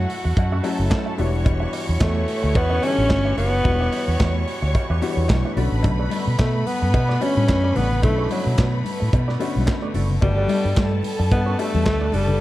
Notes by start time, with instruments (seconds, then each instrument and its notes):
Already playing: alto saxophone F#3, grand piano F#3 A3 C#4 E4 F#4 A4, french horn section A3 E4 F#4, string section F#4 F#5
0.10 open hi-hat
0.24 fingered electric bass E2, muted clean electric guitar stroke
0.37 fingered electric bass F#2, muted clean electric guitar stroke, kick, closed hi-hat, cowbell
0.52 clean electric guitar C#4 F#4 A4 E5
0.63 grand piano F#3 A3 C#4 E4 F#4, clean electric guitar C#4 F#4 A4 E5, string section A4 A5, open hi-hat, cowbell
0.79 fingered electric bass F#1, muted clean electric guitar stroke
0.90 muted clean electric guitar stroke, kick, snare, clap, closed hi-hat, cowbell
1.06 clean electric guitar C#4 F#4 A4 E5
1.18 fingered electric bass E1, french horn section D3 E3 G3 B3 F#4, grand piano E3 F#3 B3 D4 F#4, clean electric guitar D4 G4 B4 E5, string section C#5 C#6, open hi-hat
1.25 grand piano G3
1.33 muted clean electric guitar stroke
1.45 muted clean electric guitar stroke, kick, closed hi-hat, cowbell
1.60 clean electric guitar D4 G4 B4 E5
1.72 clean electric guitar D4 G4 B4 E5, open hi-hat, cowbell
1.88 fingered electric bass E2, muted clean electric guitar stroke
2.00 fingered electric bass E2, alto saxophone A3, muted clean electric guitar stroke, kick, snare, clap, closed hi-hat, cowbell
2.16 muted clean electric guitar stroke
2.28 open hi-hat
2.43 fingered electric bass D2, muted clean electric guitar stroke
2.55 fingered electric bass E2, alto saxophone B3, muted clean electric guitar stroke, kick, closed hi-hat, cowbell
2.70 clean electric guitar D4 G4 B4 E5
2.82 grand piano D3 E3 G3 B3 A4, alto saxophone C#4, clean electric guitar D4 G4 B4 E5, open hi-hat, cowbell
2.97 fingered electric bass A1, muted clean electric guitar stroke
3.09 fingered electric bass G1, muted clean electric guitar stroke, kick, snare, clap, closed hi-hat, cowbell
3.25 clean electric guitar D4 G4 B4 E5
3.37 fingered electric bass F#1, alto saxophone B3, clean electric guitar D4 G4 B4 E5, open hi-hat
3.53 muted clean electric guitar stroke
3.64 fingered electric bass E1, grand piano E3 G3 B3 D4 F#4, muted clean electric guitar stroke, kick, closed hi-hat, cowbell
3.80 clean electric guitar D4 G4 B4 E5
3.92 clean electric guitar D4 G4 B4 E5, open hi-hat, cowbell
4.08 fingered electric bass E2, muted clean electric guitar stroke
4.19 fingered electric bass E2, muted clean electric guitar stroke, kick, snare, clap, closed hi-hat, cowbell
4.35 muted clean electric guitar stroke
4.48 open hi-hat
4.62 fingered electric bass D2, muted clean electric guitar stroke
4.75 muted clean electric guitar stroke, kick, closed hi-hat, cowbell
4.90 fingered electric bass E2, clean electric guitar D4 G4 B4 E5
5.02 grand piano E3 G3 B3 D4 F#4, clean electric guitar D4 G4 B4 E5, open hi-hat, cowbell
5.17 fingered electric bass E2, muted clean electric guitar stroke
5.28 fingered electric bass B1, muted clean electric guitar stroke, kick, snare, clap, closed hi-hat, cowbell
5.45 clean electric guitar D4 G4 B4 E5
5.56 fingered electric bass B1, grand piano D3 A3 B3 C#4 F#4, french horn section D3 A3, clean electric guitar B3 F#4 A4 D5, string section B4 B5, open hi-hat
5.72 fingered electric bass A1, muted clean electric guitar stroke
5.83 fingered electric bass B1, muted clean electric guitar stroke, kick, closed hi-hat, cowbell, muted conga, low conga
5.99 clean electric guitar B3 F#4 A4 D5
6.10 clean electric guitar B3 F#4 A4 D5, open hi-hat, cowbell, high conga
6.27 fingered electric bass B2, muted clean electric guitar stroke
6.38 fingered electric bass B2, alto saxophone A3, muted clean electric guitar stroke, kick, snare, clap, closed hi-hat, cowbell, muted conga
6.54 muted clean electric guitar stroke
6.66 alto saxophone B3, open hi-hat, high conga
6.82 fingered electric bass F#2, muted clean electric guitar stroke
6.94 fingered electric bass B2, muted clean electric guitar stroke, kick, closed hi-hat, cowbell, muted conga
7.09 clean electric guitar B3 F#4 A4 D5, snare
7.20 grand piano D3 A3 B3 C#4 F#4, clean electric guitar B3 F#4 A4 D5, alto saxophone C#4, open hi-hat, cowbell, muted conga
7.37 fingered electric bass A2, high conga
7.48 fingered electric bass F#2, muted clean electric guitar stroke, kick, snare, clap, closed hi-hat, cowbell
7.64 clean electric guitar B3 F#4 A4 D5
7.76 fingered electric bass A1, clean electric guitar B3 F#4 A4 D5, alto saxophone B3, open hi-hat, muted conga, high conga, low conga
7.90 muted clean electric guitar stroke, low conga
8.02 fingered electric bass B1, grand piano D3 A3 B3 C#4 E4, alto saxophone A3, muted clean electric guitar stroke, kick, closed hi-hat, cowbell, muted conga, low conga
8.18 clean electric guitar B3 F#4 A4 D5
8.29 alto saxophone F#3, clean electric guitar B3 F#4 A4 D5, open hi-hat, cowbell, muted conga, high conga
8.45 fingered electric bass B2, muted clean electric guitar stroke
8.58 fingered electric bass B2, muted clean electric guitar stroke, kick, snare, clap, closed hi-hat, cowbell, muted conga
8.72 muted clean electric guitar stroke
8.85 open hi-hat, high conga
9.00 fingered electric bass A2, muted clean electric guitar stroke
9.13 fingered electric bass B2, muted clean electric guitar stroke, kick, closed hi-hat, cowbell, muted conga
9.28 clean electric guitar B3 F#4 A4 D5, snare
9.39 grand piano D3 A3 B3 C#4 F#4, clean electric guitar B3 F#4 A4 D5, open hi-hat, cowbell, muted conga
9.55 fingered electric bass B1, muted clean electric guitar stroke, high conga
9.67 muted clean electric guitar stroke, kick, snare, clap, closed hi-hat, cowbell
9.82 clean electric guitar B3 F#4 A4 D5
9.94 fingered electric bass F#1, clean electric guitar B3 F#4 A4 D5, open hi-hat, muted conga, high conga, low conga
10.09 muted clean electric guitar stroke, low conga
10.21 fingered electric bass G1, grand piano G3 A3 B3 D4 F#4, alto saxophone G3, french horn section G3 D4 A4 B4, string section A4 A5, muted clean electric guitar stroke, kick, closed hi-hat, cowbell, muted conga, low conga
10.37 clean electric guitar D4 F#4 B4 D5
10.48 clean electric guitar D4 F#4 B4 D5, open hi-hat, cowbell, muted conga, high conga
10.65 fingered electric bass G2, muted clean electric guitar stroke
10.76 fingered electric bass G2, muted clean electric guitar stroke, kick, snare, clap, closed hi-hat, cowbell
10.92 muted clean electric guitar stroke
11.03 open hi-hat, muted conga, high conga
11.19 fingered electric bass F#2, muted clean electric guitar stroke
11.31 fingered electric bass G2, alto saxophone B3, muted clean electric guitar stroke, kick, closed hi-hat, cowbell
11.46 clean electric guitar D4 F#4 B4 D5
11.58 grand piano G3 A3 B3 D4 F#4, alto saxophone A3, clean electric guitar D4 F#4 B4 D5, open hi-hat, cowbell
11.74 fingered electric bass E2, muted clean electric guitar stroke, high conga
11.85 fingered electric bass D2, alto saxophone A3, muted clean electric guitar stroke, kick, snare, clap, cowbell
12.01 clean electric guitar D4 F#4 B4 D5
12.12 fingered electric bass F#1, alto saxophone G3, clean electric guitar D4 F#4 B4 D5, open hi-hat, muted conga, high conga, low conga
12.28 muted clean electric guitar stroke, low conga